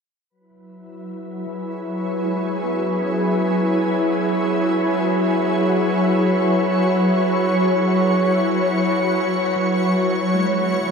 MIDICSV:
0, 0, Header, 1, 5, 480
1, 0, Start_track
1, 0, Tempo, 500000
1, 10476, End_track
2, 0, Start_track
2, 0, Title_t, "Synth texture"
2, 0, Program_c, 0, 99
2, 286, Note_on_c, 0, 83, 67
2, 290, Note_on_c, 0, 71, 72
2, 9169, Note_off_c, 0, 83, 0
2, 9174, Note_off_c, 0, 71, 0
2, 9181, Note_on_c, 0, 83, 80
2, 9185, Note_on_c, 0, 71, 77
2, 10476, Note_off_c, 0, 71, 0
2, 10476, Note_off_c, 0, 83, 0
2, 10476, End_track
3, 0, Start_track
3, 0, Title_t, "Ambient pad"
3, 0, Program_c, 1, 92
3, 301, Note_on_c, 1, 54, 74
3, 384, Note_on_c, 1, 64, 74
3, 1048, Note_on_c, 1, 68, 74
3, 1112, Note_on_c, 1, 73, 90
3, 9184, Note_off_c, 1, 68, 0
3, 9639, Note_on_c, 1, 59, 84
3, 10476, Note_off_c, 1, 54, 0
3, 10476, Note_off_c, 1, 59, 0
3, 10476, Note_off_c, 1, 64, 0
3, 10476, Note_off_c, 1, 73, 0
3, 10476, End_track
4, 0, Start_track
4, 0, Title_t, "Tine electric piano"
4, 0, Program_c, 2, 4
4, 483, Control_c, 2, 64, 127
4, 1409, Note_on_c, 2, 54, 42
4, 2153, Note_on_c, 2, 56, 37
4, 2302, Note_off_c, 2, 54, 0
4, 2529, Note_on_c, 2, 59, 49
4, 2893, Note_on_c, 2, 61, 42
4, 3229, Note_off_c, 2, 59, 0
4, 3685, Note_off_c, 2, 56, 0
4, 4418, Note_off_c, 2, 61, 0
4, 5467, Note_on_c, 2, 66, 57
4, 5467, Note_on_c, 2, 78, 58
4, 5835, Note_on_c, 2, 64, 52
4, 6167, Note_off_c, 2, 66, 0
4, 6995, Note_off_c, 2, 78, 0
4, 7368, Note_off_c, 2, 64, 0
4, 9178, Note_on_c, 2, 54, 39
4, 9199, Control_c, 2, 64, 0
4, 9378, Control_c, 2, 64, 127
4, 9933, Note_on_c, 2, 56, 42
4, 10084, Note_off_c, 2, 54, 0
4, 10476, Note_off_c, 2, 56, 0
4, 10476, End_track
5, 0, Start_track
5, 0, Title_t, "Synth drone"
5, 0, Program_c, 3, 95
5, 299, Note_on_c, 3, 54, 74
5, 10476, Note_off_c, 3, 54, 0
5, 10476, End_track
0, 0, End_of_file